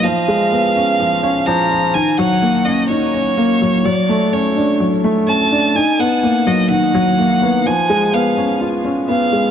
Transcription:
<<
  \new Staff \with { instrumentName = "Violin" } { \time 4/4 \key cis \mixolydian \tempo 4 = 126 eis''2. ais''4 | gis''8 fis''4 dis''8 cis''2 | d''4 cis''4 r4 a''4 | gis''8 fis''4 dis''8 fis''2 |
gis''4 eis''4 r4 eis''4 | }
  \new Staff \with { instrumentName = "Grand piano" } { \time 4/4 \key cis \mixolydian eis8 gis8 b8 cis'8 eis8 cis'8 eis8 eis'8 | dis8 fis8 ais8 cis'8 dis'8 cis'8 ais8 fis8 | fis8 a8 cis'8 d'8 fis8 a8 cis'8 d'8 | dis'8 b8 ais8 fis8 dis8 fis8 ais8 b8 |
eis8 gis8 b8 cis'8 eis'8 cis'8 b8 gis8 | }
>>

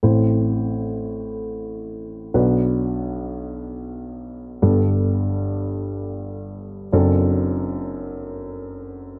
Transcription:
\new Staff \with { instrumentName = "Upright piano" } { \time 6/8 \key a \dorian \tempo 4. = 52 <a,, a, a c' e' c''>2. | <b,, b, fis b d' b'>2. | <g,, g, g b d' a'>2. | <fis,, fis, fis c' d' a'>2. | }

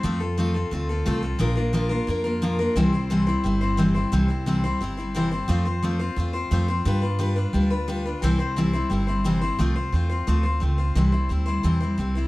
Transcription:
<<
  \new Staff \with { instrumentName = "Steel-string acoustic guitar" } { \time 4/4 \key f \major \tempo 4 = 176 <f a c' f' a'>8 <c' f' a'>8 <f a c' f' a'>8 <c' f' a'>8 <a c' f' a'>8 <c' f' a'>8 <f a c' f' a'>8 <c' f' a'>8 | <bes, f bes d' f' bes'>8 <bes d' f' bes'>8 <bes, f bes d' f' bes'>8 <bes d' f' bes'>8 <bes d' f' bes'>8 <bes d' f' bes'>8 <bes, f bes d' f' bes'>8 <bes d' f' bes'>8 | <c e g c' e' c''>8 <g c' e' c''>8 <c e g c' e' c''>8 <g c' e' c''>8 <g c' e' c''>8 <g c' e' c''>8 <c e g c' e' c''>8 <g c' e' c''>8 | <c e g c' e' c''>8 <g c' e' c''>8 <c e g c' e' c''>8 <g c' e' c''>8 <g c' e' c''>8 <g c' e' c''>8 <c e g c' e' c''>8 <g c' e' c''>8 |
<f a c' f' c''>8 <c' f' c''>8 <f a c' f' c''>8 <c' f' c''>8 <a c' f' c''>8 <c' f' c''>8 <f a c' f' c''>8 <c' f' c''>8 | <g d' f' b'>8 <d' f' b'>8 <g d' f' b'>8 <d' f' b'>8 <g d' f' b'>8 <d' f' b'>8 <g d' f' b'>8 <d' f' b'>8 | <c e g c' e' c''>8 <g c' e' c''>8 <c e g c' e' c''>8 <g c' e' c''>8 <g c' e' c''>8 <g c' e' c''>8 <c e g c' e' c''>8 <g c' e' c''>8 | <f a c' f' c''>8 <c' f' c''>8 <a c' f' c''>8 <c' f' c''>8 <f a c' f' c''>8 <c' f' c''>8 <a c' f' c''>8 <c' f' c''>8 |
<c e g c' e' c''>8 <g c' e' c''>8 <g c' e' c''>8 <g c' e' c''>8 <c e g c' e' c''>8 <g c' e' c''>8 <g c' e' c''>8 <g c' e' c''>8 | }
  \new Staff \with { instrumentName = "Upright bass" } { \clef bass \time 4/4 \key f \major f,2 d,4 c,4 | bes,,2 f,2 | c,2 g,,2 | c,2 g,,2 |
f,2 e,4 f,4 | g,2 d,2 | c,2 g,,2 | c,4 e,4 d,4 des,4 |
c,4 d,4 e,4 c,4 | }
>>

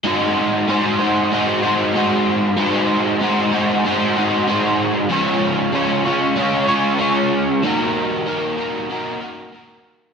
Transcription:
\new Staff \with { instrumentName = "Overdriven electric guitar" } { \time 4/4 \key aes \mixolydian \tempo 4 = 95 <aes ees' ges' c''>4 <aes ees' ges' c''>8 <ees' ges' c''>8 <aes ees' ges' c''>8 <ees' ges' c''>8 <aes ees' ges' c''>4 | <aes ees' ges' c''>4 <aes ees' ges' c''>8 <ees' ges' c''>8 <aes ees' ges' c''>8 <ees' ges' c''>8 <aes ees' ges' c''>4 | <des f aes des' f' des''>4 <aes des' f' des''>8 <aes des' f' des''>8 <aes des' f' des''>8 <aes des' f' des''>8 <aes des' f' des''>4 | <ees bes ees' ges' bes'>4 <bes ees' ges' bes'>8 <ees' ges' bes'>8 <bes ees' ges' bes'>8 <ees' ges' bes'>8 <bes ees' ges' bes'>4 | }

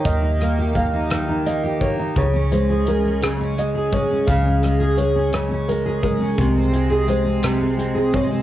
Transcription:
<<
  \new Staff \with { instrumentName = "Felt piano" } { \time 6/8 \key des \lydian \tempo 4. = 57 ees''4 f''4 ees''8 des''8 | des''8 c''8 bes'8 aes'8 ees''8 des''8 | f''4 des''4 bes'8 bes'8~ | bes'4 c''4. des''8 | }
  \new Staff \with { instrumentName = "Steel-string acoustic guitar" } { \time 6/8 \key des \lydian <ees bes ees' g'>16 ees'16 bes16 g'16 bes16 ees'16 ees16 ees'16 bes16 g'16 bes16 ees'16 | des16 des'16 aes16 aes'16 aes16 des'16 des16 des'16 aes16 aes'16 aes16 des'16 | des16 des'16 aes16 aes'16 aes16 des'16 des16 des'16 aes16 aes'16 aes16 des'16 | c16 c'16 aes16 aes'16 aes16 c'16 c16 c'16 aes16 aes'16 aes16 c'16 | }
  \new Staff \with { instrumentName = "Fingered electric bass" } { \clef bass \time 6/8 \key des \lydian ees,2. | des,2. | des,2. | c,2. | }
  \new DrumStaff \with { instrumentName = "Drums" } \drummode { \time 6/8 <hh bd>8 <hh ss>8 <hh bd>8 <hh ss>8 hh8 <hh bd>8 | <hh bd>8 hh8 hh8 <hh ss>8 hh8 <hh bd>8 | <hh bd>8 <hh ss>8 hh8 <hh ss>8 hh8 <hh bd>8 | <hh bd>8 hh8 hh8 <hh ss>8 hh8 <hh bd>8 | }
>>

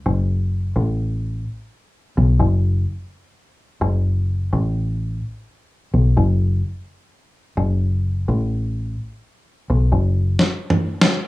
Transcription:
<<
  \new Staff \with { instrumentName = "Fingered electric bass" } { \clef bass \time 4/4 \key fis \minor \tempo 4 = 64 fis,,8. a,,8. r8. b,,16 fis,,8 r4 | fis,,8. a,,8. r8. b,,16 fis,,8 r4 | fis,,8. a,,8. r8. b,,16 fis,,8 r4 | }
  \new DrumStaff \with { instrumentName = "Drums" } \drummode { \time 4/4 r4 r4 r4 r4 | r4 r4 r4 r4 | r4 r4 r4 \tuplet 3/2 { sn8 toml8 sn8 } | }
>>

